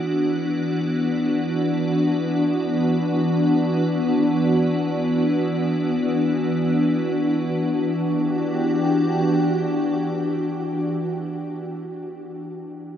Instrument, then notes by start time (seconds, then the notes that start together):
ambient pad
Already playing: E3 B3 D4 F#4
7.58 E3
7.68 D4
7.80 F#4
7.91 G4